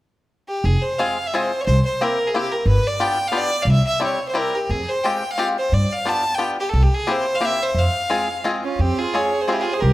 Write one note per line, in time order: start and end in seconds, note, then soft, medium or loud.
0.49 0.66 G4 medium
0.64 0.75 F1 medium
0.64 0.84 G#4 medium
0.82 1.00 C5 medium
0.99 1.17 G#3 soft
0.99 1.16 C4 soft
0.99 1.17 F4 soft
0.99 1.17 G#4 medium
0.99 1.28 F5 medium
1.26 1.36 E5 medium
1.34 1.51 G#3 medium
1.34 1.51 C4 soft
1.34 1.51 F4 soft
1.34 1.51 G#4 medium
1.34 1.62 C5 medium
1.61 1.65 C#5 medium
1.66 1.78 C2 medium
1.66 1.82 C5 medium
1.85 2.05 C5 medium
2.01 2.18 A#3 medium
2.01 2.18 C4 soft
2.01 2.18 E4 soft
2.01 2.18 G4 medium
2.01 2.29 A#4 medium
2.27 2.37 G#4 medium
2.34 2.51 A#3 medium
2.34 2.51 C4 soft
2.34 2.51 E4 medium
2.34 2.53 G4 medium
2.34 2.52 G4 medium
2.51 2.67 A#4 medium
2.66 2.77 G1 medium
2.66 2.88 B4 medium
2.87 3.02 D5 medium
3.00 3.17 B3 medium
3.00 3.17 D4 soft
3.00 3.17 F4 medium
3.00 3.18 G4 medium
3.00 3.29 G5 medium
3.28 3.50 B3 medium
3.28 3.39 F5 medium
3.33 3.50 D4 soft
3.33 3.51 F4 soft
3.33 3.50 G4 medium
3.37 3.63 D5 loud
3.62 3.77 C2 medium
3.62 3.69 F5 medium
3.71 3.86 E5 medium
3.87 4.01 E5 medium
4.00 4.18 G3 medium
4.00 4.18 C4 soft
4.00 4.18 E4 soft
4.00 4.19 G4 soft
4.04 4.27 C#5 medium
4.29 4.38 C5 medium
4.34 4.52 G3 soft
4.34 4.52 C4 soft
4.34 4.53 E4 soft
4.34 4.53 G4 medium
4.34 4.56 A#4 medium
4.55 4.72 G4 medium
4.69 4.81 F2 medium
4.69 4.90 G#4 medium
4.88 5.05 C5 medium
5.04 5.22 G#3 medium
5.04 5.22 C4 soft
5.04 5.22 F4 soft
5.04 5.23 G4 medium
5.04 5.32 G5 medium
5.31 5.48 F5 medium
5.38 5.56 G#3 medium
5.38 5.56 C4 soft
5.38 5.56 F4 medium
5.38 5.56 G4 medium
5.59 5.75 C5 medium
5.72 5.84 G2 medium
5.72 5.94 D5 medium
5.93 6.10 F5 medium
6.05 6.23 B3 soft
6.05 6.23 D4 soft
6.05 6.23 F4 soft
6.05 6.24 G4 soft
6.05 6.36 A5 medium
6.35 6.56 B3 soft
6.35 6.56 D4 soft
6.35 6.50 G5 medium
6.39 6.57 F4 soft
6.39 6.57 G4 medium
6.60 6.70 G4 medium
6.69 6.84 A4 medium
6.73 6.85 C2 medium
6.83 6.96 G4 medium
6.94 7.13 G#4 medium
7.07 7.25 A#3 medium
7.07 7.25 C4 soft
7.07 7.25 E4 soft
7.07 7.25 G4 medium
7.11 7.37 C5 medium
7.35 7.46 F5 medium
7.41 7.58 A#3 medium
7.41 7.59 C4 medium
7.41 7.59 E4 soft
7.41 7.59 G4 medium
7.45 7.64 E5 medium
7.63 7.80 C5 medium
7.74 7.86 F2 medium
7.74 8.46 F5 medium
8.10 8.27 G#3 medium
8.10 8.28 C4 soft
8.10 8.28 F4 soft
8.10 8.28 G#4 medium
8.44 8.62 G#3 medium
8.44 8.62 C4 soft
8.44 8.63 F4 medium
8.44 8.63 G#4 medium
8.64 8.83 C#4 soft
8.64 8.82 F4 medium
8.79 8.90 F2 medium
8.79 9.00 C4 medium
8.79 9.00 G4 medium
8.98 9.17 F4 soft
8.98 9.16 G#4 medium
9.14 9.32 G#3 soft
9.14 9.32 C4 soft
9.14 9.32 F4 soft
9.14 9.32 G#4 medium
9.14 9.41 G#4 soft
9.14 9.43 C#5 medium
9.41 9.51 G#4 soft
9.41 9.51 C5 medium
9.48 9.65 G#3 soft
9.48 9.66 C4 medium
9.48 9.66 F4 soft
9.48 9.55 F4 soft
9.48 9.62 G4 medium
9.48 9.66 G#4 medium
9.48 9.53 G#4 medium
9.53 9.63 E4 soft
9.60 9.75 F4 medium
9.60 9.74 G#4 medium
9.73 9.83 G#4 soft
9.73 9.82 C5 medium
9.80 9.93 C2 medium
9.80 9.93 G4 medium
9.80 9.93 A#4 medium